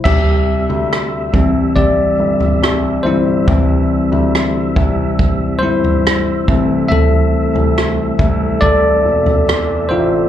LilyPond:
<<
  \new Staff \with { instrumentName = "Tine electric piano" } { \time 4/4 \key c \mixolydian \tempo 4 = 70 <g' e''>4. r8 <g' d''>4. <e' c''>8~ | <e' c''>2~ <e' c''>8 <e' c''>4. | <a' e''>4. r8 <a' d''>4. <f' c''>8 | }
  \new Staff \with { instrumentName = "Tine electric piano" } { \clef bass \time 4/4 \key c \mixolydian r4. <e g c'>8 r4. <e g c'>8 | <e g c'>2.~ <e g c'>8 <e a c'>8~ | <e a c'>2.~ <e a c'>8 r8 | }
  \new Staff \with { instrumentName = "Tonewheel organ" } { \time 4/4 \key c \mixolydian <c e''>1~ | <c e''>1~ | <c e''>1 | }
  \new Staff \with { instrumentName = "Tonewheel organ" } { \clef bass \time 4/4 \key c \mixolydian g1~ | g2.~ g8 a8~ | a1 | }
  \new Staff \with { instrumentName = "Grand piano" } { \clef bass \time 4/4 \key c \mixolydian c,8. d,8. c,4 g,,8 c,8 g,,8 | c,8. d,8. c,4 g,,8. r16 c,8~ | c,8. c,8. c,4 e,,8 e,8 a,,8 | }
  \new DrumStaff \with { instrumentName = "Drums" } \drummode { \time 4/4 <cymc bd tomfh>8. tomfh16 ss8 <bd tomfh>8 <bd tomfh>8. tomfh16 ss4 | <bd tomfh>8. tomfh16 ss8 <bd tomfh>8 <bd tomfh>8. tomfh16 ss8 bd8 | tomfh8. tomfh16 ss8 <bd tomfh>8 <bd tomfh>8. tomfh16 ss4 | }
>>